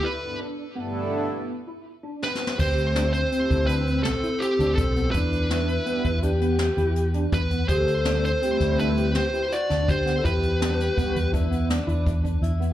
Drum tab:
CC |------------------------------------------|x-----------------------------------------|------------------------------------------|------------------------------------------|
HH |------------------------------------------|---x--x--x--x--x--x--x--x--x--x--x--x--x--|x--x--x--x--x--x--x--x--x--x--x--x--x--x--|x--x--x--x--x--x--x--x--x--x--x--x--x--x--|
SD |------------------------------------o-o-o-|------o-----------------o-----------------|------o-----------------o-----------------|------o--------o--------o-----o--o-----o--|
BD |------------------------------------------|o--------------o--------------------o-----|o--------------o--------------------o-----|o--------------o--------------------o-----|

CC |------------------------------------------|
HH |x--x--x--x--x--x--x--x--x--x--x--x--x--x--|
SD |------o--o--------------o-----------------|
BD |o-----------o--o--o-----------o--o--------|